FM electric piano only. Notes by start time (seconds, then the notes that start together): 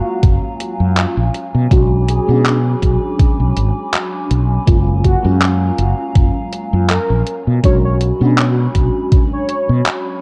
Already playing: G#3 A#3 C#4 F4 F5
1.70 G#3 C#4 D4 F#4
2.26 G#3 C#4 D4 F#4
4.66 G#3 A#3 C#4 F4
5.23 G#3 A#3 C#4 F4
7.63 G#3 C#4 D4 F#4
8.19 G#3 C#4 D4 F#4